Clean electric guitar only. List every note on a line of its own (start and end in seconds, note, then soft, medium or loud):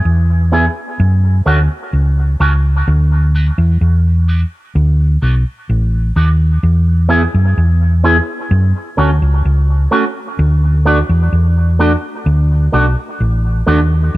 0.52 0.64 B3 medium
0.52 0.64 E4 medium
0.52 0.65 G#4 medium
1.46 1.58 A3 medium
1.46 1.58 C#4 medium
1.46 1.59 F#4 loud
2.40 2.52 A3 medium
2.40 2.52 C#4 loud
2.40 2.53 F#4 loud
3.34 3.46 A3 medium
3.34 3.46 D4 loud
3.34 3.47 F#4 loud
4.27 4.40 A3 medium
4.27 4.40 D4 medium
4.27 4.40 F#4 loud
5.21 5.34 A3 medium
5.21 5.34 D4 loud
5.21 5.34 F#4 loud
6.15 6.28 A3 medium
6.15 6.28 D4 medium
6.15 6.28 F#4 medium
7.09 7.21 B3 loud
7.09 7.22 E4 medium
7.09 7.22 G#4 loud
8.04 8.16 B3 medium
8.04 8.16 E4 medium
8.04 8.16 G#4 medium
8.97 9.09 A3 medium
8.97 9.10 C#4 medium
8.97 9.10 F#4 medium
9.91 10.03 A3 medium
9.91 10.04 C#4 medium
9.91 10.04 F#4 medium
10.85 10.97 A3 medium
10.85 10.98 D4 loud
10.85 10.98 F#4 loud
11.79 11.91 A3 medium
11.79 11.92 D4 medium
11.79 11.92 F#4 medium
12.72 12.85 A3 medium
12.72 12.85 D4 medium
12.72 12.86 F#4 loud
13.66 13.79 A3 loud
13.66 13.79 D4 medium
13.66 13.80 F#4 loud